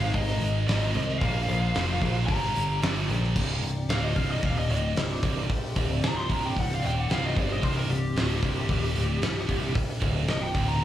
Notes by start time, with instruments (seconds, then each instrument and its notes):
Already playing: picked electric bass G#1, distorted electric guitar G#2 D#3 G#3, analog synth pad G#3 D#4 A#4, lead electric guitar F5
0.14 picked electric bass G#1, distorted electric guitar G#2 D#3 G#3, lead electric guitar D#5, kick, open hi-hat
0.41 picked electric bass G#1, open hi-hat
0.68 picked electric bass G#1, distorted electric guitar G#2 D#3 G#3, lead electric guitar D#5, snare, open hi-hat
0.83 snare
0.94 picked electric bass C2, distorted electric guitar G#2 D#3 G#3, open hi-hat
1.09 snare
1.19 picked electric bass A#1, distorted electric guitar A#2 F3 A#3, analog synth pad A#3 F4 C5, lead electric guitar F5, kick, open hi-hat
1.48 picked electric bass A#1, open hi-hat
1.74 picked electric bass F1, distorted electric guitar A#2 F3 A#3, snare, open hi-hat
2.01 picked electric bass A#1, distorted electric guitar A#2 F3 A#3, kick, open hi-hat
2.26 picked electric bass G1, distorted electric guitar G2 D3 G3, analog synth pad G3 D4 G4, lead electric guitar A#5, kick, open hi-hat
2.55 picked electric bass G1, open hi-hat
2.82 picked electric bass G1, distorted electric guitar G2 D3 G3, snare, open hi-hat
3.09 picked electric bass A#1, distorted electric guitar G2 D3 G3, open hi-hat
3.24 snare
3.36 picked electric bass C1, distorted electric guitar C2, analog synth pad C4 G4 D5, kick, crash
3.62 picked electric bass C1, distorted electric guitar C2, open hi-hat
3.89 picked electric bass D1, distorted electric guitar D2, lead electric guitar F5, snare, open hi-hat
4.04 lead electric guitar D#5
4.16 picked electric bass C1, distorted electric guitar C2, lead electric guitar F5, kick, open hi-hat
4.31 lead electric guitar D#5
4.43 picked electric bass D#1, distorted electric guitar D#2, lead electric guitar F5, kick, open hi-hat
4.59 lead electric guitar D#5
4.69 picked electric bass D1, distorted electric guitar D2, lead electric guitar D#5, open hi-hat
4.95 picked electric bass C1, distorted electric guitar C2, snare, open hi-hat
5.23 picked electric bass C1, distorted electric guitar C2, kick, open hi-hat
5.50 muted picked electric bass stroke, muted distorted electric guitar stroke, kick, open hi-hat
5.76 picked electric bass D1, distorted electric guitar D2, kick, open hi-hat
6.03 picked electric bass C1, distorted electric guitar C2, lead electric guitar A#5, snare, open hi-hat
6.18 lead electric guitar C6
6.29 picked electric bass C1, distorted electric guitar C2, lead electric guitar A#5, kick, open hi-hat
6.45 lead electric guitar G5
6.57 picked electric bass C1, distorted electric guitar C2, lead electric guitar F#5, kick, open hi-hat
6.71 lead electric guitar F5, snare
6.83 picked electric bass D#1, distorted electric guitar D#2, lead electric guitar G5, open hi-hat
7.00 lead electric guitar F#5
7.09 picked electric bass C1, distorted electric guitar C2, lead electric guitar F5, snare, open hi-hat
7.26 lead electric guitar D#5
7.36 picked electric bass G1, distorted electric guitar G2, lead electric guitar C5, kick, open hi-hat
7.52 lead electric guitar D#5
7.62 picked electric bass C1, distorted electric guitar C2, lead electric guitar C5, kick, open hi-hat
7.76 lead electric guitar A#4
7.89 picked electric bass C1, distorted electric guitar C2, lead electric guitar G4, open hi-hat
8.15 picked electric bass D1, distorted electric guitar D2, lead electric guitar G4, snare, open hi-hat
8.43 picked electric bass C1, distorted electric guitar C2, kick, open hi-hat
8.69 picked electric bass D#1, distorted electric guitar D#2, kick, open hi-hat
8.95 picked electric bass D1, distorted electric guitar D2, open hi-hat
9.21 picked electric bass C1, distorted electric guitar C2, snare, open hi-hat
9.49 picked electric bass C1, distorted electric guitar C2, kick, open hi-hat
9.75 muted picked electric bass stroke, muted distorted electric guitar stroke, kick, open hi-hat
10.02 picked electric bass D1, distorted electric guitar D2, kick, open hi-hat
10.27 picked electric bass C1, distorted electric guitar C2, lead electric guitar D#5, snare, open hi-hat
10.42 lead electric guitar G5
10.55 picked electric bass D1, distorted electric guitar D2, kick, open hi-hat
10.68 lead electric guitar A#5